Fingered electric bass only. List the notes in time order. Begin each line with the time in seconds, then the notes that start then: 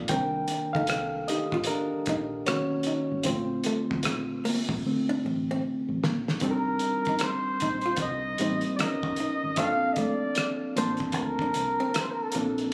0.10 C2
0.75 D2
0.89 C2
1.53 A1
1.93 muted fingered electric bass stroke
2.08 A#1
2.48 B1
3.12 G#1
3.26 A#1
3.92 D2
4.06 A#1
4.69 A#1
5.10 muted fingered electric bass stroke
5.25 A1
5.89 A1
6.03 A#1
6.42 C2
7.63 A#1
7.98 C2
8.39 A1
8.80 B1
9.04 B1
9.44 G#1
9.58 A#1
10.77 A1
11.14 D2
11.56 C2
12.35 A#1